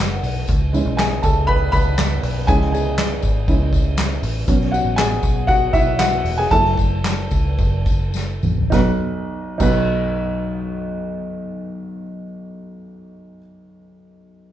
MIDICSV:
0, 0, Header, 1, 4, 480
1, 0, Start_track
1, 0, Tempo, 498753
1, 468, Time_signature, 4, 2, 24, 8
1, 4788, Tempo, 516351
1, 6708, Tempo, 559701
1, 8148, Tempo, 586510
1, 12898, End_track
2, 0, Start_track
2, 0, Title_t, "Upright piano"
2, 0, Program_c, 0, 0
2, 0, Control_c, 0, 64, 127
2, 0, Note_on_c, 0, 56, 63
2, 0, Note_on_c, 0, 57, 56
2, 0, Note_on_c, 0, 64, 65
2, 0, Note_on_c, 0, 66, 68
2, 0, Note_on_c, 0, 68, 70
2, 0, Note_on_c, 0, 78, 92
2, 0, Note_on_c, 0, 80, 88
2, 184, Note_off_c, 0, 78, 0
2, 193, Note_off_c, 0, 66, 0
2, 481, Control_c, 0, 64, 0
2, 482, Note_off_c, 0, 80, 0
2, 483, Note_off_c, 0, 64, 0
2, 486, Note_off_c, 0, 68, 0
2, 488, Note_off_c, 0, 56, 0
2, 489, Note_off_c, 0, 57, 0
2, 659, Control_c, 0, 64, 127
2, 703, Note_on_c, 0, 56, 61
2, 707, Note_on_c, 0, 61, 54
2, 713, Note_on_c, 0, 64, 63
2, 934, Note_on_c, 0, 80, 99
2, 954, Note_on_c, 0, 68, 79
2, 1175, Note_off_c, 0, 68, 0
2, 1178, Note_on_c, 0, 81, 87
2, 1189, Note_off_c, 0, 80, 0
2, 1197, Note_on_c, 0, 69, 82
2, 1415, Note_on_c, 0, 83, 119
2, 1416, Note_off_c, 0, 69, 0
2, 1430, Note_off_c, 0, 81, 0
2, 1432, Note_on_c, 0, 71, 95
2, 1640, Note_off_c, 0, 83, 0
2, 1654, Note_off_c, 0, 71, 0
2, 1655, Note_on_c, 0, 83, 121
2, 1673, Note_on_c, 0, 71, 88
2, 2352, Note_off_c, 0, 71, 0
2, 2370, Note_off_c, 0, 56, 0
2, 2375, Note_off_c, 0, 61, 0
2, 2378, Note_off_c, 0, 64, 0
2, 2380, Note_on_c, 0, 80, 112
2, 2384, Note_on_c, 0, 56, 66
2, 2389, Note_on_c, 0, 61, 62
2, 2392, Note_on_c, 0, 64, 63
2, 2397, Note_on_c, 0, 68, 83
2, 2403, Note_off_c, 0, 83, 0
2, 2607, Note_off_c, 0, 80, 0
2, 2616, Note_off_c, 0, 68, 0
2, 2622, Note_on_c, 0, 80, 93
2, 2638, Note_on_c, 0, 68, 72
2, 3336, Note_off_c, 0, 56, 0
2, 3340, Note_off_c, 0, 61, 0
2, 3345, Note_off_c, 0, 64, 0
2, 3350, Note_on_c, 0, 56, 57
2, 3355, Note_on_c, 0, 61, 53
2, 3359, Note_on_c, 0, 64, 65
2, 3565, Note_off_c, 0, 56, 0
2, 3568, Note_off_c, 0, 61, 0
2, 3570, Note_off_c, 0, 64, 0
2, 4026, Note_off_c, 0, 80, 0
2, 4034, Note_off_c, 0, 68, 0
2, 4305, Note_on_c, 0, 54, 65
2, 4311, Note_on_c, 0, 59, 55
2, 4315, Note_on_c, 0, 61, 65
2, 4319, Control_c, 0, 64, 0
2, 4499, Control_c, 0, 64, 127
2, 4538, Note_on_c, 0, 78, 92
2, 4558, Note_on_c, 0, 66, 71
2, 4593, Note_off_c, 0, 78, 0
2, 4611, Note_off_c, 0, 66, 0
2, 4776, Note_on_c, 0, 80, 110
2, 4795, Note_on_c, 0, 68, 83
2, 4987, Note_off_c, 0, 54, 0
2, 4989, Note_off_c, 0, 59, 0
2, 4992, Note_off_c, 0, 61, 0
2, 5228, Note_off_c, 0, 68, 0
2, 5251, Note_on_c, 0, 78, 109
2, 5266, Note_off_c, 0, 80, 0
2, 5268, Note_on_c, 0, 66, 90
2, 5305, Note_off_c, 0, 78, 0
2, 5320, Note_off_c, 0, 66, 0
2, 5491, Note_on_c, 0, 76, 101
2, 5507, Note_on_c, 0, 64, 75
2, 5714, Note_off_c, 0, 76, 0
2, 5723, Note_off_c, 0, 64, 0
2, 5728, Note_on_c, 0, 78, 104
2, 5746, Note_on_c, 0, 66, 80
2, 6067, Note_off_c, 0, 78, 0
2, 6076, Note_off_c, 0, 66, 0
2, 6090, Note_on_c, 0, 80, 105
2, 6104, Note_on_c, 0, 68, 84
2, 6136, Note_off_c, 0, 80, 0
2, 6150, Note_off_c, 0, 68, 0
2, 6215, Note_on_c, 0, 81, 121
2, 6217, Note_on_c, 0, 54, 66
2, 6223, Note_on_c, 0, 57, 54
2, 6228, Control_c, 0, 64, 0
2, 6228, Note_on_c, 0, 64, 69
2, 6230, Note_on_c, 0, 69, 85
2, 6384, Control_c, 0, 64, 127
2, 7620, Note_off_c, 0, 81, 0
2, 7627, Note_off_c, 0, 69, 0
2, 8115, Note_off_c, 0, 54, 0
2, 8119, Note_off_c, 0, 57, 0
2, 8120, Note_off_c, 0, 64, 0
2, 8132, Note_on_c, 0, 63, 88
2, 8148, Note_on_c, 0, 66, 82
2, 8149, Note_on_c, 0, 35, 88
2, 8160, Control_c, 0, 64, 0
2, 8163, Note_on_c, 0, 71, 97
2, 8274, Note_off_c, 0, 63, 0
2, 8282, Note_off_c, 0, 66, 0
2, 8283, Note_off_c, 0, 35, 0
2, 8291, Note_off_c, 0, 71, 0
2, 8316, Control_c, 0, 64, 127
2, 8852, Note_on_c, 0, 63, 85
2, 8868, Note_on_c, 0, 35, 82
2, 8870, Note_on_c, 0, 66, 81
2, 8885, Note_on_c, 0, 71, 101
2, 11957, Note_off_c, 0, 63, 0
2, 11973, Note_off_c, 0, 35, 0
2, 11975, Note_off_c, 0, 66, 0
2, 11991, Note_off_c, 0, 71, 0
2, 12898, End_track
3, 0, Start_track
3, 0, Title_t, "Fingered electric bass"
3, 0, Program_c, 1, 33
3, 0, Note_on_c, 1, 30, 114
3, 191, Note_off_c, 1, 30, 0
3, 224, Note_on_c, 1, 35, 90
3, 449, Note_off_c, 1, 35, 0
3, 466, Note_on_c, 1, 37, 98
3, 802, Note_off_c, 1, 37, 0
3, 822, Note_on_c, 1, 35, 94
3, 1159, Note_off_c, 1, 35, 0
3, 1190, Note_on_c, 1, 37, 109
3, 1635, Note_off_c, 1, 37, 0
3, 1667, Note_on_c, 1, 37, 104
3, 2114, Note_off_c, 1, 37, 0
3, 2147, Note_on_c, 1, 35, 98
3, 2389, Note_off_c, 1, 35, 0
3, 2389, Note_on_c, 1, 37, 93
3, 3073, Note_off_c, 1, 37, 0
3, 3110, Note_on_c, 1, 32, 111
3, 3333, Note_off_c, 1, 32, 0
3, 3351, Note_on_c, 1, 37, 115
3, 4034, Note_off_c, 1, 37, 0
3, 4068, Note_on_c, 1, 33, 109
3, 4291, Note_off_c, 1, 33, 0
3, 4311, Note_on_c, 1, 35, 104
3, 4645, Note_off_c, 1, 35, 0
3, 4666, Note_on_c, 1, 33, 97
3, 4997, Note_off_c, 1, 33, 0
3, 5027, Note_on_c, 1, 35, 110
3, 5464, Note_off_c, 1, 35, 0
3, 5496, Note_on_c, 1, 35, 110
3, 5940, Note_off_c, 1, 35, 0
3, 5970, Note_on_c, 1, 28, 108
3, 6197, Note_off_c, 1, 28, 0
3, 6218, Note_on_c, 1, 30, 114
3, 6907, Note_off_c, 1, 30, 0
3, 6943, Note_on_c, 1, 37, 102
3, 7160, Note_off_c, 1, 37, 0
3, 7175, Note_on_c, 1, 30, 119
3, 7865, Note_off_c, 1, 30, 0
3, 7902, Note_on_c, 1, 33, 97
3, 8133, Note_off_c, 1, 33, 0
3, 8149, Note_on_c, 1, 35, 97
3, 8283, Note_off_c, 1, 35, 0
3, 8870, Note_on_c, 1, 35, 115
3, 11975, Note_off_c, 1, 35, 0
3, 12898, End_track
4, 0, Start_track
4, 0, Title_t, "Drums"
4, 225, Note_on_c, 9, 54, 33
4, 230, Note_on_c, 9, 46, 78
4, 230, Note_on_c, 9, 51, 61
4, 322, Note_off_c, 9, 54, 0
4, 327, Note_off_c, 9, 46, 0
4, 327, Note_off_c, 9, 51, 0
4, 456, Note_on_c, 9, 54, 54
4, 468, Note_on_c, 9, 36, 123
4, 470, Note_on_c, 9, 44, 72
4, 471, Note_on_c, 9, 51, 78
4, 552, Note_off_c, 9, 54, 0
4, 565, Note_off_c, 9, 36, 0
4, 567, Note_off_c, 9, 44, 0
4, 567, Note_off_c, 9, 51, 0
4, 706, Note_on_c, 9, 51, 64
4, 715, Note_on_c, 9, 54, 55
4, 803, Note_off_c, 9, 51, 0
4, 811, Note_off_c, 9, 54, 0
4, 948, Note_on_c, 9, 38, 120
4, 949, Note_on_c, 9, 51, 85
4, 953, Note_on_c, 9, 54, 84
4, 956, Note_on_c, 9, 39, 85
4, 1044, Note_off_c, 9, 38, 0
4, 1045, Note_off_c, 9, 51, 0
4, 1049, Note_off_c, 9, 54, 0
4, 1052, Note_off_c, 9, 39, 0
4, 1182, Note_on_c, 9, 54, 57
4, 1187, Note_on_c, 9, 51, 66
4, 1191, Note_on_c, 9, 36, 105
4, 1278, Note_off_c, 9, 54, 0
4, 1283, Note_off_c, 9, 51, 0
4, 1287, Note_off_c, 9, 36, 0
4, 1430, Note_on_c, 9, 36, 96
4, 1433, Note_on_c, 9, 51, 80
4, 1526, Note_off_c, 9, 36, 0
4, 1529, Note_off_c, 9, 51, 0
4, 1667, Note_on_c, 9, 36, 98
4, 1669, Note_on_c, 9, 51, 60
4, 1676, Note_on_c, 9, 54, 47
4, 1763, Note_off_c, 9, 36, 0
4, 1765, Note_off_c, 9, 51, 0
4, 1772, Note_off_c, 9, 54, 0
4, 1902, Note_on_c, 9, 54, 104
4, 1904, Note_on_c, 9, 38, 117
4, 1909, Note_on_c, 9, 51, 80
4, 1912, Note_on_c, 9, 39, 94
4, 1998, Note_off_c, 9, 54, 0
4, 2001, Note_off_c, 9, 38, 0
4, 2005, Note_off_c, 9, 51, 0
4, 2009, Note_off_c, 9, 39, 0
4, 2148, Note_on_c, 9, 46, 80
4, 2148, Note_on_c, 9, 51, 66
4, 2149, Note_on_c, 9, 54, 33
4, 2245, Note_off_c, 9, 46, 0
4, 2245, Note_off_c, 9, 51, 0
4, 2246, Note_off_c, 9, 54, 0
4, 2387, Note_on_c, 9, 44, 70
4, 2387, Note_on_c, 9, 51, 76
4, 2389, Note_on_c, 9, 54, 50
4, 2390, Note_on_c, 9, 36, 127
4, 2483, Note_off_c, 9, 44, 0
4, 2484, Note_off_c, 9, 51, 0
4, 2485, Note_off_c, 9, 54, 0
4, 2486, Note_off_c, 9, 36, 0
4, 2509, Note_on_c, 9, 38, 39
4, 2605, Note_off_c, 9, 38, 0
4, 2625, Note_on_c, 9, 51, 65
4, 2642, Note_on_c, 9, 54, 56
4, 2721, Note_off_c, 9, 51, 0
4, 2739, Note_off_c, 9, 54, 0
4, 2866, Note_on_c, 9, 38, 122
4, 2867, Note_on_c, 9, 51, 81
4, 2874, Note_on_c, 9, 39, 89
4, 2876, Note_on_c, 9, 54, 87
4, 2963, Note_off_c, 9, 38, 0
4, 2963, Note_off_c, 9, 51, 0
4, 2971, Note_off_c, 9, 39, 0
4, 2972, Note_off_c, 9, 54, 0
4, 3102, Note_on_c, 9, 54, 54
4, 3108, Note_on_c, 9, 51, 65
4, 3111, Note_on_c, 9, 36, 90
4, 3199, Note_off_c, 9, 54, 0
4, 3204, Note_off_c, 9, 51, 0
4, 3208, Note_off_c, 9, 36, 0
4, 3349, Note_on_c, 9, 36, 101
4, 3349, Note_on_c, 9, 51, 80
4, 3349, Note_on_c, 9, 54, 32
4, 3445, Note_off_c, 9, 51, 0
4, 3446, Note_off_c, 9, 36, 0
4, 3446, Note_off_c, 9, 54, 0
4, 3587, Note_on_c, 9, 36, 108
4, 3588, Note_on_c, 9, 51, 59
4, 3597, Note_on_c, 9, 54, 49
4, 3683, Note_off_c, 9, 36, 0
4, 3684, Note_off_c, 9, 51, 0
4, 3693, Note_off_c, 9, 54, 0
4, 3825, Note_on_c, 9, 54, 104
4, 3828, Note_on_c, 9, 38, 120
4, 3833, Note_on_c, 9, 51, 84
4, 3836, Note_on_c, 9, 39, 104
4, 3921, Note_off_c, 9, 54, 0
4, 3924, Note_off_c, 9, 38, 0
4, 3929, Note_off_c, 9, 51, 0
4, 3932, Note_off_c, 9, 39, 0
4, 4070, Note_on_c, 9, 54, 37
4, 4073, Note_on_c, 9, 46, 87
4, 4073, Note_on_c, 9, 51, 68
4, 4166, Note_off_c, 9, 54, 0
4, 4169, Note_off_c, 9, 46, 0
4, 4169, Note_off_c, 9, 51, 0
4, 4306, Note_on_c, 9, 54, 53
4, 4311, Note_on_c, 9, 36, 113
4, 4311, Note_on_c, 9, 44, 71
4, 4311, Note_on_c, 9, 51, 80
4, 4402, Note_off_c, 9, 54, 0
4, 4407, Note_off_c, 9, 44, 0
4, 4407, Note_off_c, 9, 51, 0
4, 4408, Note_off_c, 9, 36, 0
4, 4432, Note_on_c, 9, 38, 43
4, 4528, Note_off_c, 9, 38, 0
4, 4551, Note_on_c, 9, 51, 67
4, 4562, Note_on_c, 9, 54, 57
4, 4647, Note_off_c, 9, 51, 0
4, 4658, Note_off_c, 9, 54, 0
4, 4792, Note_on_c, 9, 38, 120
4, 4793, Note_on_c, 9, 51, 80
4, 4800, Note_on_c, 9, 39, 94
4, 4801, Note_on_c, 9, 54, 96
4, 4885, Note_off_c, 9, 38, 0
4, 4886, Note_off_c, 9, 51, 0
4, 4893, Note_off_c, 9, 39, 0
4, 4894, Note_off_c, 9, 54, 0
4, 5022, Note_on_c, 9, 54, 57
4, 5026, Note_on_c, 9, 51, 66
4, 5028, Note_on_c, 9, 36, 89
4, 5115, Note_off_c, 9, 54, 0
4, 5119, Note_off_c, 9, 51, 0
4, 5120, Note_off_c, 9, 36, 0
4, 5261, Note_on_c, 9, 36, 102
4, 5262, Note_on_c, 9, 54, 33
4, 5264, Note_on_c, 9, 51, 83
4, 5354, Note_off_c, 9, 36, 0
4, 5355, Note_off_c, 9, 54, 0
4, 5357, Note_off_c, 9, 51, 0
4, 5494, Note_on_c, 9, 36, 103
4, 5497, Note_on_c, 9, 51, 58
4, 5503, Note_on_c, 9, 54, 51
4, 5587, Note_off_c, 9, 36, 0
4, 5590, Note_off_c, 9, 51, 0
4, 5596, Note_off_c, 9, 54, 0
4, 5730, Note_on_c, 9, 54, 98
4, 5731, Note_on_c, 9, 38, 123
4, 5736, Note_on_c, 9, 51, 81
4, 5739, Note_on_c, 9, 39, 96
4, 5823, Note_off_c, 9, 54, 0
4, 5824, Note_off_c, 9, 38, 0
4, 5829, Note_off_c, 9, 51, 0
4, 5832, Note_off_c, 9, 39, 0
4, 5977, Note_on_c, 9, 46, 87
4, 5977, Note_on_c, 9, 51, 70
4, 6070, Note_off_c, 9, 46, 0
4, 6070, Note_off_c, 9, 51, 0
4, 6216, Note_on_c, 9, 44, 73
4, 6216, Note_on_c, 9, 51, 83
4, 6216, Note_on_c, 9, 54, 47
4, 6217, Note_on_c, 9, 36, 113
4, 6309, Note_off_c, 9, 44, 0
4, 6309, Note_off_c, 9, 51, 0
4, 6309, Note_off_c, 9, 54, 0
4, 6310, Note_off_c, 9, 36, 0
4, 6339, Note_on_c, 9, 38, 38
4, 6432, Note_off_c, 9, 38, 0
4, 6459, Note_on_c, 9, 51, 70
4, 6461, Note_on_c, 9, 36, 95
4, 6473, Note_on_c, 9, 54, 58
4, 6552, Note_off_c, 9, 51, 0
4, 6554, Note_off_c, 9, 36, 0
4, 6566, Note_off_c, 9, 54, 0
4, 6710, Note_on_c, 9, 38, 118
4, 6711, Note_on_c, 9, 51, 79
4, 6717, Note_on_c, 9, 39, 93
4, 6717, Note_on_c, 9, 54, 92
4, 6796, Note_off_c, 9, 38, 0
4, 6796, Note_off_c, 9, 51, 0
4, 6802, Note_off_c, 9, 54, 0
4, 6803, Note_off_c, 9, 39, 0
4, 6937, Note_on_c, 9, 54, 56
4, 6941, Note_on_c, 9, 51, 68
4, 6943, Note_on_c, 9, 36, 96
4, 7023, Note_off_c, 9, 54, 0
4, 7027, Note_off_c, 9, 51, 0
4, 7029, Note_off_c, 9, 36, 0
4, 7176, Note_on_c, 9, 36, 102
4, 7178, Note_on_c, 9, 54, 33
4, 7179, Note_on_c, 9, 51, 82
4, 7262, Note_off_c, 9, 36, 0
4, 7264, Note_off_c, 9, 51, 0
4, 7264, Note_off_c, 9, 54, 0
4, 7411, Note_on_c, 9, 36, 107
4, 7411, Note_on_c, 9, 51, 52
4, 7417, Note_on_c, 9, 54, 47
4, 7496, Note_off_c, 9, 36, 0
4, 7497, Note_off_c, 9, 51, 0
4, 7503, Note_off_c, 9, 54, 0
4, 7648, Note_on_c, 9, 54, 99
4, 7656, Note_on_c, 9, 38, 65
4, 7734, Note_off_c, 9, 54, 0
4, 7742, Note_off_c, 9, 38, 0
4, 7897, Note_on_c, 9, 54, 34
4, 7900, Note_on_c, 9, 45, 114
4, 7983, Note_off_c, 9, 54, 0
4, 7986, Note_off_c, 9, 45, 0
4, 8025, Note_on_c, 9, 43, 105
4, 8111, Note_off_c, 9, 43, 0
4, 8149, Note_on_c, 9, 36, 118
4, 8149, Note_on_c, 9, 38, 90
4, 8149, Note_on_c, 9, 54, 86
4, 8231, Note_off_c, 9, 36, 0
4, 8231, Note_off_c, 9, 38, 0
4, 8231, Note_off_c, 9, 54, 0
4, 8868, Note_on_c, 9, 49, 89
4, 8868, Note_on_c, 9, 54, 88
4, 8870, Note_on_c, 9, 36, 113
4, 8950, Note_off_c, 9, 49, 0
4, 8950, Note_off_c, 9, 54, 0
4, 8951, Note_off_c, 9, 36, 0
4, 12898, End_track
0, 0, End_of_file